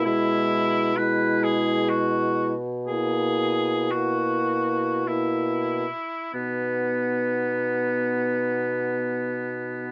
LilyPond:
<<
  \new Staff \with { instrumentName = "Oboe" } { \time 3/4 \key b \major \tempo 4 = 53 e'4 b'8 gis'8 fis'8 r8 | gis'4 fis'4 e'4 | b2. | }
  \new Staff \with { instrumentName = "Clarinet" } { \time 3/4 \key b \major e'4 e'4. r8 | e'4 e'4 e'8 r8 | dis'2. | }
  \new Staff \with { instrumentName = "French horn" } { \time 3/4 \key b \major gis4 gis4. r8 | ais4 ais4 ais8 r8 | b2. | }
  \new Staff \with { instrumentName = "Bassoon" } { \clef bass \time 3/4 \key b \major b,2.~ | b,2~ b,8 r8 | b,2. | }
>>